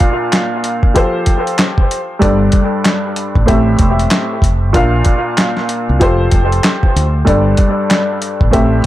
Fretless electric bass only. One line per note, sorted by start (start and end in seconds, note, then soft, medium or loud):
2.22 2.49 G1 loud
3.36 3.46 A1 medium
3.49 3.75 A1 loud
3.80 4.06 E1 medium
4.42 4.75 F1 medium
4.75 5.01 A#1 loud
5.89 5.99 C2 medium
6.02 6.28 F1 medium
6.33 6.59 F1 medium
6.96 7.22 D2 medium
7.28 7.54 G1 loud
8.41 8.51 A1 medium
8.54 8.80 A1 loud